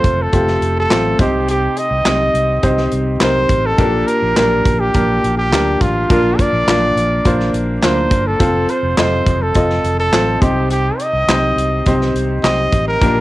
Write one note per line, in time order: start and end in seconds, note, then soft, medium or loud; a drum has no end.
0.00 0.33 A3 medium
0.00 0.33 C4 medium
0.00 0.33 F4 medium
0.00 1.21 A4 medium
0.00 0.23 C5 medium
0.04 0.28 F1 medium
0.04 kick medium
0.04 closed hi-hat medium
0.22 0.78 A4 medium
0.33 0.57 F1 medium
0.33 0.80 A3 medium
0.33 0.80 C4 medium
0.33 0.80 F4 medium
0.33 0.80 G4 medium
0.33 kick medium
0.33 closed hi-hat medium
0.47 snare soft
0.61 0.85 F1 medium
0.61 closed hi-hat medium
0.80 1.18 A4 medium
0.90 1.14 A1 medium
0.90 1.19 A3 medium
0.90 1.18 C4 soft
0.90 1.19 F4 medium
0.90 1.18 C5 medium
0.90 snare medium
0.90 clap medium
0.90 closed hi-hat medium
1.19 1.66 C2 medium
1.19 2.02 C3 medium
1.19 1.90 C4 medium
1.19 1.90 D#4 medium
1.19 1.90 G4 medium
1.19 1.47 G4 medium
1.19 1.90 C5 medium
1.19 kick medium
1.19 closed hi-hat medium
1.48 1.80 G4 medium
1.48 closed hi-hat medium
1.77 2.93 D#5 medium
1.77 closed hi-hat medium
1.91 2.03 C2 medium
2.05 2.29 C2 medium
2.05 2.53 C4 medium
2.05 2.53 D#4 medium
2.05 2.53 G4 medium
2.05 2.53 D#5 medium
2.05 snare medium
2.05 clap medium
2.05 closed hi-hat medium
2.34 2.58 C2 medium
2.34 closed hi-hat medium
2.63 2.87 C2 medium
2.63 3.10 C4 medium
2.63 3.11 D#4 medium
2.63 3.10 G4 medium
2.63 3.11 C5 medium
2.63 kick medium
2.63 closed hi-hat medium
2.78 snare soft
2.92 3.16 C2 medium
2.92 closed hi-hat medium
3.20 3.45 C2 medium
3.20 3.68 C4 medium
3.20 3.68 D#4 medium
3.20 3.68 G4 soft
3.20 3.68 A#4 medium
3.20 3.68 C5 medium
3.20 snare medium
3.20 clap medium
3.20 closed hi-hat medium
3.49 3.73 A1 medium
3.49 kick medium
3.49 closed hi-hat medium
3.66 4.09 A4 medium
3.78 4.02 A#1 medium
3.78 4.61 A#2 medium
3.78 4.26 A#3 medium
3.78 4.26 D4 medium
3.78 4.25 G4 medium
3.78 4.26 A#4 medium
3.78 kick medium
3.78 closed hi-hat medium
4.07 4.36 A#4 medium
4.07 closed hi-hat medium
4.22 4.34 A#1 medium
4.36 4.61 A#1 medium
4.36 4.84 A#3 medium
4.36 4.84 D4 medium
4.36 4.84 G4 medium
4.36 4.84 A#4 medium
4.36 4.81 A#4 medium
4.36 snare medium
4.36 clap medium
4.36 closed hi-hat medium
4.65 4.89 A#1 medium
4.65 kick medium
4.65 closed hi-hat medium
4.80 5.38 G4 medium
4.94 5.18 A#1 medium
4.94 5.42 A#3 medium
4.94 5.42 D4 medium
4.94 5.42 G4 medium
4.94 5.42 A#4 medium
4.94 kick medium
4.94 closed hi-hat medium
5.24 5.52 A#1 medium
5.24 closed hi-hat medium
5.38 5.83 G4 medium
5.52 5.76 D2 medium
5.52 5.99 A#3 medium
5.52 5.99 D4 medium
5.52 5.99 G4 medium
5.52 5.99 A#4 medium
5.52 snare medium
5.52 clap medium
5.52 closed hi-hat medium
5.81 6.04 A1 medium
5.81 6.10 F4 medium
5.81 kick medium
5.81 closed hi-hat medium
6.10 6.33 A#1 medium
6.10 6.92 A#2 medium
6.10 6.57 A#3 medium
6.10 6.57 D4 medium
6.10 6.57 F4 medium
6.10 6.41 F4 medium
6.10 6.57 A#4 medium
6.10 kick loud
6.10 closed hi-hat medium
6.39 7.55 D5 medium
6.39 kick medium
6.39 closed hi-hat medium
6.53 6.65 A#1 medium
6.67 6.91 A#1 medium
6.67 7.15 A#3 medium
6.67 7.15 D4 medium
6.67 7.15 F4 medium
6.67 7.15 A#4 medium
6.67 snare medium
6.67 clap medium
6.67 closed hi-hat medium
6.96 7.19 A#1 medium
6.96 closed hi-hat medium
7.25 7.49 A#1 medium
7.25 7.72 A#3 medium
7.25 7.72 D4 medium
7.25 7.72 F4 medium
7.25 7.73 C5 medium
7.25 kick medium
7.25 closed hi-hat medium
7.40 snare soft
7.53 7.77 A#1 medium
7.53 closed hi-hat medium
7.82 8.06 D2 medium
7.82 8.30 A#3 medium
7.82 8.30 D4 soft
7.82 8.30 F4 medium
7.82 8.30 A#4 medium
7.82 8.29 C5 medium
7.82 snare medium
7.82 clap medium
7.82 closed hi-hat medium
8.10 8.35 G1 medium
8.10 kick medium
8.10 closed hi-hat medium
8.27 8.71 A4 medium
8.40 8.64 F1 medium
8.40 8.87 C4 medium
8.40 8.87 F4 medium
8.40 8.87 A4 medium
8.40 8.87 C5 medium
8.40 kick medium
8.40 closed hi-hat medium
8.69 8.98 C5 medium
8.69 closed hi-hat medium
8.83 8.95 F1 medium
8.97 9.21 F1 medium
8.97 9.45 C4 medium
8.97 9.45 F4 medium
8.97 9.45 A4 medium
8.97 9.44 C5 medium
8.97 9.45 D#5 medium
8.97 snare loud
8.97 clap medium
8.97 closed hi-hat medium
9.26 9.50 F1 medium
9.26 kick medium
9.26 closed hi-hat medium
9.42 9.99 A4 medium
9.54 9.79 F1 medium
9.54 10.03 C4 medium
9.54 10.03 F4 medium
9.54 10.03 A4 medium
9.54 10.03 D#5 medium
9.54 kick medium
9.54 closed hi-hat medium
9.70 snare soft
9.84 10.08 F1 medium
9.84 closed hi-hat medium
10.00 10.43 A4 medium
10.12 10.36 A1 medium
10.12 10.40 C4 medium
10.12 10.42 F4 medium
10.12 10.42 A4 medium
10.12 10.40 C5 medium
10.12 snare medium
10.12 clap medium
10.12 closed hi-hat medium
10.42 10.89 C2 medium
10.42 11.24 C3 medium
10.42 11.12 C4 medium
10.42 11.12 D#4 medium
10.42 11.12 G4 medium
10.42 10.71 G4 medium
10.42 11.12 C5 medium
10.42 kick medium
10.42 closed hi-hat medium
10.70 11.02 G4 medium
10.70 closed hi-hat medium
11.00 12.15 D#5 medium
11.00 closed hi-hat medium
11.13 11.25 C2 medium
11.27 11.52 C2 medium
11.27 11.76 C4 medium
11.27 11.76 D#4 medium
11.27 11.76 G4 medium
11.27 11.76 C5 medium
11.27 snare medium
11.27 clap medium
11.27 closed hi-hat medium
11.56 11.80 C2 medium
11.56 closed hi-hat medium
11.86 12.10 C2 medium
11.86 12.34 C4 medium
11.86 12.34 D#4 medium
11.86 12.34 G4 medium
11.86 12.34 C5 medium
11.86 kick medium
11.86 closed hi-hat medium
12.01 snare soft
12.14 12.38 C2 medium
12.14 closed hi-hat medium
12.43 12.67 C2 medium
12.43 12.91 C4 medium
12.43 12.91 D#4 medium
12.43 12.91 G4 medium
12.43 12.91 C5 medium
12.43 12.84 D#5 medium
12.43 snare medium
12.43 clap medium
12.43 closed hi-hat medium
12.72 12.96 A1 medium
12.72 kick medium
12.72 closed hi-hat medium
12.88 13.21 A#4 medium
13.01 13.21 A#1 medium
13.01 13.21 A#2 medium
13.01 13.21 A#3 medium
13.01 13.21 D4 medium
13.01 13.21 G4 medium
13.01 13.21 A#4 medium
13.01 kick loud
13.01 closed hi-hat medium